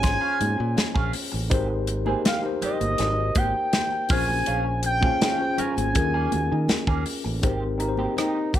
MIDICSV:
0, 0, Header, 1, 9, 480
1, 0, Start_track
1, 0, Key_signature, -4, "major"
1, 0, Tempo, 739827
1, 981, Time_signature, 4, 2, 24, 8
1, 5578, End_track
2, 0, Start_track
2, 0, Title_t, "Celesta"
2, 0, Program_c, 0, 8
2, 20, Note_on_c, 0, 84, 72
2, 897, Note_off_c, 0, 84, 0
2, 5061, Note_on_c, 0, 82, 49
2, 5578, Note_off_c, 0, 82, 0
2, 5578, End_track
3, 0, Start_track
3, 0, Title_t, "Analog synth lead"
3, 0, Program_c, 1, 81
3, 0, Note_on_c, 1, 80, 112
3, 717, Note_off_c, 1, 80, 0
3, 1473, Note_on_c, 1, 77, 81
3, 1563, Note_off_c, 1, 77, 0
3, 1713, Note_on_c, 1, 75, 96
3, 2188, Note_on_c, 1, 79, 110
3, 2198, Note_off_c, 1, 75, 0
3, 2662, Note_off_c, 1, 79, 0
3, 2665, Note_on_c, 1, 80, 118
3, 3116, Note_off_c, 1, 80, 0
3, 3153, Note_on_c, 1, 79, 109
3, 3634, Note_on_c, 1, 80, 106
3, 3644, Note_off_c, 1, 79, 0
3, 4587, Note_off_c, 1, 80, 0
3, 5305, Note_on_c, 1, 63, 77
3, 5527, Note_off_c, 1, 63, 0
3, 5543, Note_on_c, 1, 67, 88
3, 5578, Note_off_c, 1, 67, 0
3, 5578, End_track
4, 0, Start_track
4, 0, Title_t, "Tine electric piano"
4, 0, Program_c, 2, 4
4, 0, Control_c, 2, 64, 127
4, 0, Note_on_c, 2, 61, 80
4, 0, Note_on_c, 2, 65, 67
4, 0, Note_on_c, 2, 68, 68
4, 0, Note_on_c, 2, 72, 80
4, 0, Note_on_c, 2, 73, 89
4, 342, Note_off_c, 2, 61, 0
4, 346, Note_off_c, 2, 65, 0
4, 351, Note_off_c, 2, 68, 0
4, 357, Note_off_c, 2, 73, 0
4, 973, Note_on_c, 2, 63, 95
4, 979, Note_on_c, 2, 67, 86
4, 988, Note_on_c, 2, 70, 92
4, 989, Control_c, 2, 64, 0
4, 991, Note_off_c, 2, 72, 0
4, 997, Note_on_c, 2, 72, 109
4, 1116, Control_c, 2, 64, 127
4, 1233, Note_off_c, 2, 63, 0
4, 1236, Note_off_c, 2, 67, 0
4, 1240, Note_off_c, 2, 70, 0
4, 1245, Note_off_c, 2, 72, 0
4, 1332, Note_on_c, 2, 63, 76
4, 1340, Note_on_c, 2, 67, 76
4, 1347, Note_on_c, 2, 70, 72
4, 1355, Note_on_c, 2, 72, 88
4, 1507, Note_off_c, 2, 63, 0
4, 1511, Note_off_c, 2, 67, 0
4, 1514, Note_off_c, 2, 70, 0
4, 1519, Note_off_c, 2, 72, 0
4, 1568, Note_on_c, 2, 63, 75
4, 1578, Note_on_c, 2, 67, 76
4, 1587, Note_on_c, 2, 70, 76
4, 1595, Note_on_c, 2, 72, 88
4, 2257, Note_off_c, 2, 63, 0
4, 2262, Note_off_c, 2, 67, 0
4, 2266, Note_off_c, 2, 70, 0
4, 2270, Note_off_c, 2, 72, 0
4, 2653, Note_on_c, 2, 60, 63
4, 2660, Note_on_c, 2, 65, 73
4, 2667, Note_on_c, 2, 68, 73
4, 2668, Control_c, 2, 64, 0
4, 2678, Note_on_c, 2, 72, 89
4, 2696, Note_on_c, 2, 61, 76
4, 2698, Note_off_c, 2, 60, 0
4, 2791, Control_c, 2, 64, 127
4, 3140, Note_off_c, 2, 65, 0
4, 3143, Note_off_c, 2, 68, 0
4, 3148, Note_off_c, 2, 72, 0
4, 3158, Note_off_c, 2, 61, 0
4, 3248, Note_on_c, 2, 61, 75
4, 3257, Note_on_c, 2, 65, 69
4, 3265, Note_on_c, 2, 68, 69
4, 3273, Note_on_c, 2, 72, 77
4, 3424, Note_off_c, 2, 61, 0
4, 3429, Note_off_c, 2, 65, 0
4, 3433, Note_off_c, 2, 68, 0
4, 3437, Note_off_c, 2, 72, 0
4, 3492, Note_on_c, 2, 61, 79
4, 3499, Note_on_c, 2, 65, 66
4, 3508, Note_on_c, 2, 68, 69
4, 3517, Note_on_c, 2, 72, 84
4, 3842, Note_off_c, 2, 61, 0
4, 3850, Note_on_c, 2, 61, 76
4, 3852, Note_off_c, 2, 65, 0
4, 3860, Note_off_c, 2, 68, 0
4, 3860, Note_on_c, 2, 65, 68
4, 3867, Control_c, 2, 64, 0
4, 3868, Note_on_c, 2, 68, 70
4, 3869, Note_off_c, 2, 72, 0
4, 3874, Note_on_c, 2, 70, 84
4, 3971, Control_c, 2, 64, 127
4, 4623, Note_off_c, 2, 61, 0
4, 4628, Note_off_c, 2, 65, 0
4, 4632, Note_off_c, 2, 68, 0
4, 4635, Note_off_c, 2, 70, 0
4, 4813, Note_on_c, 2, 60, 76
4, 4819, Note_on_c, 2, 63, 82
4, 4830, Control_c, 2, 64, 0
4, 4830, Note_on_c, 2, 67, 74
4, 4838, Note_on_c, 2, 70, 90
4, 4934, Control_c, 2, 64, 127
4, 4988, Note_off_c, 2, 60, 0
4, 4991, Note_off_c, 2, 63, 0
4, 4996, Note_off_c, 2, 67, 0
4, 5000, Note_off_c, 2, 70, 0
4, 5046, Note_on_c, 2, 60, 75
4, 5053, Note_on_c, 2, 63, 78
4, 5065, Note_on_c, 2, 67, 72
4, 5075, Note_on_c, 2, 70, 73
4, 5110, Note_off_c, 2, 70, 0
4, 5114, Note_on_c, 2, 72, 87
4, 5578, Note_off_c, 2, 60, 0
4, 5578, Note_off_c, 2, 63, 0
4, 5578, Note_off_c, 2, 67, 0
4, 5578, Note_off_c, 2, 72, 0
4, 5578, End_track
5, 0, Start_track
5, 0, Title_t, "Clean electric guitar"
5, 0, Program_c, 3, 27
5, 134, Note_on_c, 3, 68, 70
5, 139, Note_on_c, 3, 65, 67
5, 143, Note_on_c, 3, 61, 61
5, 249, Note_off_c, 3, 61, 0
5, 253, Note_off_c, 3, 65, 0
5, 255, Note_off_c, 3, 68, 0
5, 613, Note_on_c, 3, 68, 70
5, 618, Note_on_c, 3, 65, 63
5, 622, Note_on_c, 3, 61, 55
5, 730, Note_off_c, 3, 61, 0
5, 733, Note_off_c, 3, 65, 0
5, 735, Note_off_c, 3, 68, 0
5, 974, Note_on_c, 3, 56, 73
5, 977, Note_on_c, 3, 60, 79
5, 981, Note_on_c, 3, 67, 86
5, 1087, Note_off_c, 3, 67, 0
5, 1094, Note_off_c, 3, 60, 0
5, 1105, Note_off_c, 3, 56, 0
5, 1341, Note_on_c, 3, 68, 62
5, 1346, Note_on_c, 3, 60, 60
5, 1348, Note_on_c, 3, 56, 50
5, 1440, Note_off_c, 3, 68, 0
5, 1443, Note_off_c, 3, 60, 0
5, 1444, Note_off_c, 3, 56, 0
5, 1461, Note_on_c, 3, 56, 84
5, 1466, Note_on_c, 3, 60, 79
5, 1468, Note_on_c, 3, 67, 84
5, 1573, Note_off_c, 3, 67, 0
5, 1579, Note_off_c, 3, 60, 0
5, 1588, Note_off_c, 3, 56, 0
5, 1700, Note_on_c, 3, 56, 56
5, 1704, Note_on_c, 3, 60, 61
5, 1707, Note_on_c, 3, 67, 57
5, 1800, Note_off_c, 3, 56, 0
5, 1802, Note_off_c, 3, 60, 0
5, 1804, Note_off_c, 3, 67, 0
5, 2180, Note_on_c, 3, 56, 50
5, 2183, Note_on_c, 3, 60, 59
5, 2189, Note_on_c, 3, 67, 64
5, 2280, Note_off_c, 3, 56, 0
5, 2281, Note_off_c, 3, 60, 0
5, 2284, Note_off_c, 3, 67, 0
5, 2662, Note_on_c, 3, 61, 75
5, 2666, Note_on_c, 3, 65, 77
5, 2671, Note_on_c, 3, 68, 85
5, 2775, Note_off_c, 3, 68, 0
5, 2781, Note_off_c, 3, 65, 0
5, 2789, Note_off_c, 3, 61, 0
5, 2902, Note_on_c, 3, 61, 81
5, 2905, Note_on_c, 3, 65, 83
5, 2909, Note_on_c, 3, 68, 92
5, 3013, Note_off_c, 3, 68, 0
5, 3019, Note_off_c, 3, 65, 0
5, 3028, Note_off_c, 3, 61, 0
5, 3260, Note_on_c, 3, 68, 58
5, 3266, Note_on_c, 3, 65, 55
5, 3271, Note_on_c, 3, 61, 51
5, 3360, Note_off_c, 3, 68, 0
5, 3363, Note_off_c, 3, 65, 0
5, 3365, Note_off_c, 3, 61, 0
5, 3383, Note_on_c, 3, 61, 69
5, 3388, Note_on_c, 3, 65, 79
5, 3392, Note_on_c, 3, 68, 74
5, 3497, Note_off_c, 3, 68, 0
5, 3503, Note_off_c, 3, 65, 0
5, 3509, Note_off_c, 3, 61, 0
5, 3622, Note_on_c, 3, 61, 57
5, 3627, Note_on_c, 3, 65, 56
5, 3630, Note_on_c, 3, 70, 68
5, 3720, Note_off_c, 3, 61, 0
5, 3723, Note_off_c, 3, 65, 0
5, 3725, Note_off_c, 3, 70, 0
5, 3985, Note_on_c, 3, 68, 71
5, 3989, Note_on_c, 3, 61, 65
5, 3992, Note_on_c, 3, 58, 60
5, 4099, Note_off_c, 3, 58, 0
5, 4103, Note_off_c, 3, 61, 0
5, 4106, Note_off_c, 3, 68, 0
5, 4462, Note_on_c, 3, 68, 66
5, 4467, Note_on_c, 3, 61, 63
5, 4471, Note_on_c, 3, 58, 58
5, 4572, Note_off_c, 3, 58, 0
5, 4575, Note_off_c, 3, 61, 0
5, 4580, Note_off_c, 3, 68, 0
5, 4820, Note_on_c, 3, 56, 64
5, 4825, Note_on_c, 3, 60, 80
5, 4826, Note_on_c, 3, 67, 83
5, 4948, Note_off_c, 3, 56, 0
5, 4950, Note_off_c, 3, 60, 0
5, 4951, Note_off_c, 3, 67, 0
5, 5182, Note_on_c, 3, 67, 59
5, 5184, Note_on_c, 3, 60, 51
5, 5189, Note_on_c, 3, 56, 47
5, 5281, Note_off_c, 3, 67, 0
5, 5282, Note_off_c, 3, 60, 0
5, 5285, Note_off_c, 3, 56, 0
5, 5301, Note_on_c, 3, 56, 65
5, 5306, Note_on_c, 3, 60, 78
5, 5310, Note_on_c, 3, 67, 72
5, 5429, Note_off_c, 3, 56, 0
5, 5431, Note_off_c, 3, 60, 0
5, 5434, Note_off_c, 3, 67, 0
5, 5578, End_track
6, 0, Start_track
6, 0, Title_t, "Fingered electric bass"
6, 0, Program_c, 4, 33
6, 0, Note_on_c, 4, 32, 77
6, 107, Note_off_c, 4, 32, 0
6, 266, Note_on_c, 4, 44, 93
6, 364, Note_off_c, 4, 44, 0
6, 389, Note_on_c, 4, 46, 93
6, 486, Note_off_c, 4, 46, 0
6, 621, Note_on_c, 4, 34, 85
6, 722, Note_off_c, 4, 34, 0
6, 868, Note_on_c, 4, 33, 80
6, 966, Note_off_c, 4, 33, 0
6, 984, Note_on_c, 4, 32, 107
6, 1385, Note_off_c, 4, 32, 0
6, 1823, Note_on_c, 4, 31, 81
6, 1922, Note_off_c, 4, 31, 0
6, 1945, Note_on_c, 4, 32, 93
6, 2144, Note_off_c, 4, 32, 0
6, 2178, Note_on_c, 4, 32, 95
6, 2279, Note_off_c, 4, 32, 0
6, 2662, Note_on_c, 4, 34, 95
6, 2862, Note_off_c, 4, 34, 0
6, 2907, Note_on_c, 4, 34, 89
6, 3307, Note_off_c, 4, 34, 0
6, 3747, Note_on_c, 4, 32, 88
6, 3845, Note_off_c, 4, 32, 0
6, 3866, Note_on_c, 4, 39, 99
6, 4065, Note_off_c, 4, 39, 0
6, 4112, Note_on_c, 4, 39, 79
6, 4207, Note_off_c, 4, 39, 0
6, 4231, Note_on_c, 4, 51, 94
6, 4327, Note_off_c, 4, 51, 0
6, 4461, Note_on_c, 4, 39, 87
6, 4562, Note_off_c, 4, 39, 0
6, 4708, Note_on_c, 4, 33, 79
6, 4805, Note_off_c, 4, 33, 0
6, 4826, Note_on_c, 4, 32, 78
6, 5227, Note_off_c, 4, 32, 0
6, 5578, End_track
7, 0, Start_track
7, 0, Title_t, "Muted clean electric guitar strokes"
7, 17, Note_on_c, 9, 29, 39
7, 82, Note_off_c, 9, 29, 0
7, 257, Note_on_c, 9, 29, 36
7, 322, Note_off_c, 9, 29, 0
7, 376, Note_on_c, 9, 29, 42
7, 441, Note_off_c, 9, 29, 0
7, 495, Note_on_c, 9, 29, 40
7, 560, Note_off_c, 9, 29, 0
7, 737, Note_on_c, 9, 29, 41
7, 802, Note_off_c, 9, 29, 0
7, 855, Note_on_c, 9, 29, 45
7, 920, Note_off_c, 9, 29, 0
7, 1095, Note_on_c, 9, 29, 37
7, 1160, Note_off_c, 9, 29, 0
7, 1218, Note_on_c, 9, 29, 36
7, 1282, Note_off_c, 9, 29, 0
7, 1581, Note_on_c, 9, 29, 41
7, 1646, Note_off_c, 9, 29, 0
7, 1821, Note_on_c, 9, 29, 43
7, 1885, Note_off_c, 9, 29, 0
7, 1939, Note_on_c, 9, 29, 46
7, 2004, Note_off_c, 9, 29, 0
7, 2299, Note_on_c, 9, 29, 34
7, 2364, Note_off_c, 9, 29, 0
7, 2545, Note_on_c, 9, 29, 36
7, 2610, Note_off_c, 9, 29, 0
7, 2783, Note_on_c, 9, 29, 41
7, 2847, Note_off_c, 9, 29, 0
7, 3021, Note_on_c, 9, 29, 38
7, 3086, Note_off_c, 9, 29, 0
7, 3142, Note_on_c, 9, 29, 37
7, 3206, Note_off_c, 9, 29, 0
7, 3505, Note_on_c, 9, 29, 47
7, 3569, Note_off_c, 9, 29, 0
7, 3747, Note_on_c, 9, 29, 43
7, 3812, Note_off_c, 9, 29, 0
7, 3866, Note_on_c, 9, 29, 35
7, 3931, Note_off_c, 9, 29, 0
7, 4106, Note_on_c, 9, 29, 31
7, 4171, Note_off_c, 9, 29, 0
7, 4228, Note_on_c, 9, 29, 41
7, 4293, Note_off_c, 9, 29, 0
7, 4351, Note_on_c, 9, 29, 34
7, 4416, Note_off_c, 9, 29, 0
7, 4580, Note_on_c, 9, 29, 40
7, 4645, Note_off_c, 9, 29, 0
7, 4700, Note_on_c, 9, 29, 46
7, 4765, Note_off_c, 9, 29, 0
7, 5059, Note_on_c, 9, 29, 39
7, 5124, Note_off_c, 9, 29, 0
7, 5541, Note_on_c, 9, 29, 31
7, 5578, Note_off_c, 9, 29, 0
7, 5578, End_track
8, 0, Start_track
8, 0, Title_t, "Muted fingered electric bass strokes"
8, 506, Note_on_c, 9, 29, 48
8, 571, Note_off_c, 9, 29, 0
8, 1706, Note_on_c, 9, 29, 41
8, 1771, Note_off_c, 9, 29, 0
8, 3629, Note_on_c, 9, 29, 41
8, 3694, Note_off_c, 9, 29, 0
8, 4354, Note_on_c, 9, 29, 45
8, 4419, Note_off_c, 9, 29, 0
8, 5578, End_track
9, 0, Start_track
9, 0, Title_t, "Drums"
9, 20, Note_on_c, 9, 42, 79
9, 22, Note_on_c, 9, 62, 32
9, 22, Note_on_c, 9, 64, 67
9, 25, Note_on_c, 9, 36, 98
9, 29, Note_on_c, 9, 38, 42
9, 85, Note_off_c, 9, 42, 0
9, 87, Note_off_c, 9, 62, 0
9, 87, Note_off_c, 9, 64, 0
9, 90, Note_off_c, 9, 36, 0
9, 94, Note_off_c, 9, 38, 0
9, 263, Note_on_c, 9, 63, 75
9, 264, Note_on_c, 9, 42, 73
9, 328, Note_off_c, 9, 63, 0
9, 329, Note_off_c, 9, 42, 0
9, 500, Note_on_c, 9, 62, 33
9, 500, Note_on_c, 9, 63, 69
9, 504, Note_on_c, 9, 42, 69
9, 507, Note_on_c, 9, 38, 95
9, 565, Note_off_c, 9, 62, 0
9, 565, Note_off_c, 9, 63, 0
9, 569, Note_off_c, 9, 42, 0
9, 572, Note_off_c, 9, 38, 0
9, 620, Note_on_c, 9, 36, 87
9, 685, Note_off_c, 9, 36, 0
9, 736, Note_on_c, 9, 46, 92
9, 740, Note_on_c, 9, 62, 30
9, 800, Note_off_c, 9, 46, 0
9, 805, Note_off_c, 9, 62, 0
9, 860, Note_on_c, 9, 63, 42
9, 925, Note_off_c, 9, 63, 0
9, 980, Note_on_c, 9, 62, 28
9, 981, Note_on_c, 9, 42, 87
9, 982, Note_on_c, 9, 36, 111
9, 1045, Note_off_c, 9, 62, 0
9, 1046, Note_off_c, 9, 42, 0
9, 1047, Note_off_c, 9, 36, 0
9, 1216, Note_on_c, 9, 42, 78
9, 1219, Note_on_c, 9, 62, 29
9, 1280, Note_off_c, 9, 42, 0
9, 1284, Note_off_c, 9, 62, 0
9, 1336, Note_on_c, 9, 63, 69
9, 1401, Note_off_c, 9, 63, 0
9, 1460, Note_on_c, 9, 63, 67
9, 1462, Note_on_c, 9, 42, 86
9, 1465, Note_on_c, 9, 38, 112
9, 1525, Note_off_c, 9, 63, 0
9, 1527, Note_off_c, 9, 42, 0
9, 1530, Note_off_c, 9, 38, 0
9, 1697, Note_on_c, 9, 62, 27
9, 1697, Note_on_c, 9, 64, 56
9, 1701, Note_on_c, 9, 42, 70
9, 1762, Note_off_c, 9, 62, 0
9, 1762, Note_off_c, 9, 64, 0
9, 1766, Note_off_c, 9, 42, 0
9, 1821, Note_on_c, 9, 63, 69
9, 1823, Note_on_c, 9, 42, 50
9, 1886, Note_off_c, 9, 63, 0
9, 1888, Note_off_c, 9, 42, 0
9, 1935, Note_on_c, 9, 42, 80
9, 1942, Note_on_c, 9, 62, 31
9, 1942, Note_on_c, 9, 64, 67
9, 1945, Note_on_c, 9, 38, 40
9, 2000, Note_off_c, 9, 42, 0
9, 2007, Note_off_c, 9, 62, 0
9, 2007, Note_off_c, 9, 64, 0
9, 2009, Note_off_c, 9, 38, 0
9, 2174, Note_on_c, 9, 42, 68
9, 2177, Note_on_c, 9, 36, 94
9, 2181, Note_on_c, 9, 62, 34
9, 2181, Note_on_c, 9, 63, 76
9, 2238, Note_off_c, 9, 42, 0
9, 2242, Note_off_c, 9, 36, 0
9, 2246, Note_off_c, 9, 62, 0
9, 2246, Note_off_c, 9, 63, 0
9, 2419, Note_on_c, 9, 42, 70
9, 2422, Note_on_c, 9, 38, 95
9, 2422, Note_on_c, 9, 63, 67
9, 2484, Note_off_c, 9, 42, 0
9, 2487, Note_off_c, 9, 38, 0
9, 2487, Note_off_c, 9, 63, 0
9, 2652, Note_on_c, 9, 46, 90
9, 2660, Note_on_c, 9, 36, 119
9, 2717, Note_off_c, 9, 46, 0
9, 2725, Note_off_c, 9, 36, 0
9, 2778, Note_on_c, 9, 63, 50
9, 2843, Note_off_c, 9, 63, 0
9, 2896, Note_on_c, 9, 42, 91
9, 2903, Note_on_c, 9, 62, 32
9, 2961, Note_off_c, 9, 42, 0
9, 2968, Note_off_c, 9, 62, 0
9, 3132, Note_on_c, 9, 42, 79
9, 3144, Note_on_c, 9, 62, 29
9, 3197, Note_off_c, 9, 42, 0
9, 3209, Note_off_c, 9, 62, 0
9, 3255, Note_on_c, 9, 63, 64
9, 3261, Note_on_c, 9, 36, 93
9, 3320, Note_off_c, 9, 63, 0
9, 3326, Note_off_c, 9, 36, 0
9, 3381, Note_on_c, 9, 62, 29
9, 3381, Note_on_c, 9, 63, 65
9, 3384, Note_on_c, 9, 42, 89
9, 3387, Note_on_c, 9, 38, 122
9, 3446, Note_off_c, 9, 62, 0
9, 3446, Note_off_c, 9, 63, 0
9, 3449, Note_off_c, 9, 42, 0
9, 3452, Note_off_c, 9, 38, 0
9, 3619, Note_on_c, 9, 62, 28
9, 3619, Note_on_c, 9, 64, 62
9, 3623, Note_on_c, 9, 42, 72
9, 3684, Note_off_c, 9, 62, 0
9, 3684, Note_off_c, 9, 64, 0
9, 3687, Note_off_c, 9, 42, 0
9, 3743, Note_on_c, 9, 63, 69
9, 3749, Note_on_c, 9, 42, 55
9, 3808, Note_off_c, 9, 63, 0
9, 3814, Note_off_c, 9, 42, 0
9, 3860, Note_on_c, 9, 42, 76
9, 3863, Note_on_c, 9, 64, 66
9, 3864, Note_on_c, 9, 36, 99
9, 3925, Note_off_c, 9, 42, 0
9, 3928, Note_off_c, 9, 64, 0
9, 3929, Note_off_c, 9, 36, 0
9, 4099, Note_on_c, 9, 62, 38
9, 4099, Note_on_c, 9, 63, 79
9, 4101, Note_on_c, 9, 42, 65
9, 4164, Note_off_c, 9, 62, 0
9, 4164, Note_off_c, 9, 63, 0
9, 4166, Note_off_c, 9, 42, 0
9, 4336, Note_on_c, 9, 62, 32
9, 4336, Note_on_c, 9, 63, 72
9, 4341, Note_on_c, 9, 42, 71
9, 4344, Note_on_c, 9, 38, 96
9, 4401, Note_off_c, 9, 62, 0
9, 4401, Note_off_c, 9, 63, 0
9, 4406, Note_off_c, 9, 42, 0
9, 4409, Note_off_c, 9, 38, 0
9, 4459, Note_on_c, 9, 36, 85
9, 4524, Note_off_c, 9, 36, 0
9, 4577, Note_on_c, 9, 62, 28
9, 4579, Note_on_c, 9, 46, 82
9, 4642, Note_off_c, 9, 62, 0
9, 4644, Note_off_c, 9, 46, 0
9, 4701, Note_on_c, 9, 63, 44
9, 4766, Note_off_c, 9, 63, 0
9, 4819, Note_on_c, 9, 62, 28
9, 4821, Note_on_c, 9, 42, 77
9, 4823, Note_on_c, 9, 36, 104
9, 4884, Note_off_c, 9, 62, 0
9, 4886, Note_off_c, 9, 42, 0
9, 4888, Note_off_c, 9, 36, 0
9, 5060, Note_on_c, 9, 42, 59
9, 5060, Note_on_c, 9, 62, 24
9, 5125, Note_off_c, 9, 42, 0
9, 5125, Note_off_c, 9, 62, 0
9, 5173, Note_on_c, 9, 63, 63
9, 5238, Note_off_c, 9, 63, 0
9, 5298, Note_on_c, 9, 63, 56
9, 5307, Note_on_c, 9, 42, 79
9, 5310, Note_on_c, 9, 37, 104
9, 5363, Note_off_c, 9, 63, 0
9, 5372, Note_off_c, 9, 42, 0
9, 5375, Note_off_c, 9, 37, 0
9, 5535, Note_on_c, 9, 64, 57
9, 5541, Note_on_c, 9, 36, 91
9, 5541, Note_on_c, 9, 42, 65
9, 5578, Note_off_c, 9, 36, 0
9, 5578, Note_off_c, 9, 42, 0
9, 5578, Note_off_c, 9, 64, 0
9, 5578, End_track
0, 0, End_of_file